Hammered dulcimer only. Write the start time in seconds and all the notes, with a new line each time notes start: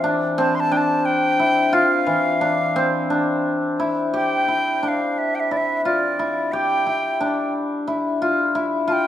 Already playing: E3 C4 G4
0.04 D4
0.38 C4
0.71 D4
1.39 E4
1.73 F4
2.07 E3
2.41 D4
2.76 C4
3.10 D4
3.80 E4
4.14 G4
4.48 E4
4.83 D4
5.51 E4
5.85 F4
6.19 E4
6.53 G4
6.87 E4
7.21 D4
7.87 E4
8.22 F4
8.55 E4
8.88 F4